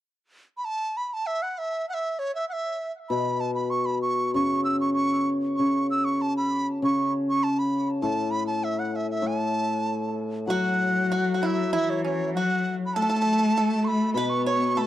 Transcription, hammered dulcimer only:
3.10 4.34 B2 medium
4.34 5.58 C#3 medium
5.59 6.81 C#3 soft
6.82 8.04 C#3 medium
8.02 9.21 A2 medium
9.22 11.10 A2 medium
10.47 12.33 F#3 soft
14.14 14.87 B2 medium

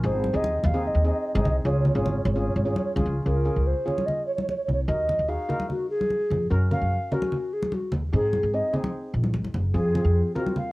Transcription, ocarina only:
0.05 0.37 C5 loud
0.36 0.67 D#5 medium
0.66 0.88 F5 medium
0.87 1.06 D#5 medium
1.06 1.13 D#5 medium
1.13 1.20 D#5 medium
1.20 1.27 D#5 medium
1.27 1.34 D#5 medium
1.36 1.42 D#5 medium
1.43 1.49 D#5 medium
1.49 1.56 D#5 medium
1.65 1.71 C#5 medium
1.71 1.79 C#5 medium
1.79 1.87 C#5 medium
1.88 1.95 C#5 medium
1.96 2.02 C#5 medium
2.03 2.10 C#5 soft
2.11 2.16 C#5 medium
2.17 2.24 C#5 medium
2.24 2.32 C#5 medium
2.33 2.40 C#5 soft
2.41 2.48 C#5 soft
2.49 2.55 C#5 soft
2.56 2.62 C#5 medium
2.64 2.70 C#5 medium
2.71 2.77 C#5 soft
2.78 2.84 C#5 medium
2.84 2.92 C#5 medium
3.26 3.68 A#4 medium
3.67 3.88 C5 medium
3.87 4.08 C#5 medium
4.06 4.26 D#5 medium
4.27 4.34 C#5 medium
4.35 4.41 C#5 soft
4.42 4.49 C#5 medium
4.49 4.56 C#5 medium
4.57 4.64 C#5 medium
4.64 4.72 C#5 medium
4.73 4.80 C#5 medium
4.88 5.30 D#5 loud
5.29 5.70 F5 medium
5.70 5.89 F#4 medium
5.90 6.47 G#4 loud
6.72 7.15 F5 loud
7.14 7.55 F#4 loud
7.53 7.75 G#4 medium
7.74 7.93 F#4 medium
8.14 8.56 G#4 medium
8.54 8.74 D#5 medium
9.76 10.32 G#4 loud
10.37 10.56 F#4 medium
10.58 10.72 F5 medium

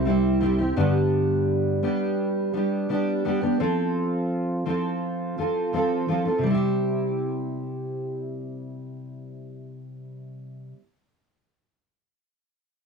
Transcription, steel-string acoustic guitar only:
0.05 0.39 G3 medium
0.05 0.40 C4 medium
0.05 0.40 E4 medium
0.05 0.41 G4 medium
0.41 0.59 G3 medium
0.41 0.59 C4 medium
0.41 0.58 E4 medium
0.41 0.57 G4 medium
0.58 0.77 C4 soft
0.58 0.77 E4 soft
0.58 0.76 G4 medium
0.76 1.83 G2 medium
0.76 1.83 D3 medium
0.76 1.81 G3 medium
0.76 1.82 B3 medium
0.76 1.82 D4 medium
0.76 1.83 G4 medium
1.83 2.52 G3 medium
1.83 2.53 B3 medium
1.83 2.53 D4 medium
1.83 2.54 G4 medium
2.53 2.88 G3 medium
2.53 2.89 B3 medium
2.53 2.89 D4 medium
2.53 2.90 G4 medium
2.89 3.24 G3 medium
2.89 3.24 B3 medium
2.89 3.24 D4 medium
2.89 3.25 G4 medium
3.25 3.42 G3 medium
3.25 3.42 B3 medium
3.25 3.41 D4 medium
3.25 3.40 G4 medium
3.41 3.60 G3 soft
3.41 3.59 B3 soft
3.41 3.60 D4 soft
3.41 3.60 G4 medium
3.60 4.64 F3 medium
3.60 4.66 C4 medium
3.60 4.66 F4 medium
3.60 4.67 A4 medium
4.66 5.36 F3 medium
4.66 5.38 C4 medium
4.66 5.37 F4 medium
4.66 5.38 A4 medium
5.38 5.72 F3 soft
5.38 5.73 C4 soft
5.38 5.73 F4 medium
5.38 5.74 A4 medium
5.73 6.07 F3 soft
5.73 6.07 C4 medium
5.73 6.08 F4 soft
5.73 6.09 A4 medium
6.08 6.26 F3 medium
6.08 6.26 C4 medium
6.08 6.25 F4 medium
6.08 6.24 A4 medium
6.25 6.44 C4 soft
6.25 6.44 F4 soft
6.25 6.43 A4 soft
6.38 10.72 C3 medium
6.43 10.77 G3 medium
6.43 10.79 C4 medium
6.51 10.81 E4 medium
6.51 10.83 G4 medium

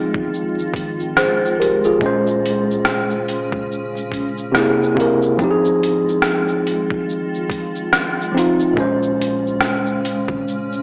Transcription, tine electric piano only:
0.00 2.02 F3 medium
0.00 2.02 C4 medium
0.00 2.02 D#4 medium
0.00 1.18 G#4 medium
1.17 1.57 G#4 soft
1.17 1.57 C5 medium
1.60 1.83 G4 medium
1.60 1.82 A#4 medium
1.85 2.24 F4 medium
1.85 2.24 G#4 medium
1.99 3.10 A#2 medium
1.99 3.11 G#3 medium
2.03 3.13 C#4 medium
2.03 3.14 C5 medium
4.52 4.88 C3 loud
4.52 4.89 A#3 medium
4.56 4.90 E4 medium
4.56 4.91 G#4 medium
4.94 5.25 C3 medium
4.94 5.26 A#3 medium
4.99 5.27 E4 medium
4.99 5.28 A#4 medium
5.37 6.49 F3 medium
5.37 6.50 C4 medium
5.42 6.51 D#4 medium
5.42 5.49 G4 medium
5.51 6.55 G#4 loud
8.32 8.62 F3 medium
8.32 8.64 C4 medium
8.37 8.65 D#4 medium
8.37 8.66 F4 medium
8.73 9.86 A#2 medium
8.73 9.87 G#3 medium
8.78 9.88 C#4 medium
8.78 9.89 C5 medium

